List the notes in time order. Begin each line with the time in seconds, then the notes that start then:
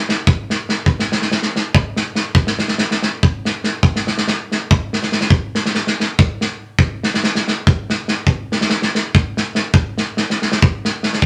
0.09 snare
0.27 kick
0.50 snare
0.69 snare
0.86 kick
0.99 snare
1.12 snare
1.22 snare
1.32 snare
1.42 snare
1.56 snare
1.75 kick
1.96 snare
2.15 snare
2.35 kick
2.47 snare
2.59 snare
2.68 snare
2.78 snare
2.91 snare
3.03 snare
3.23 kick
3.45 snare
3.64 snare
3.83 kick
3.96 snare
4.07 snare
4.18 snare
4.28 snare
4.52 snare
4.71 kick
4.93 snare
5.03 snare
5.12 snare
5.21 snare
5.30 kick
5.55 snare
5.66 snare
5.75 snare
5.87 snare
6.00 snare
6.19 kick
6.41 snare
6.79 kick
7.03 snare
7.14 snare
7.24 snare
7.35 snare
7.48 snare
7.67 kick
7.90 snare
8.08 snare
8.27 kick
8.52 snare
8.61 snare
8.70 snare
8.82 snare
8.95 snare
9.15 kick
9.37 snare
9.55 snare
9.74 kick
9.98 snare
10.17 snare
10.30 snare
10.42 snare
10.52 snare
10.62 kick
10.85 snare
11.03 snare
11.13 snare
11.22 kick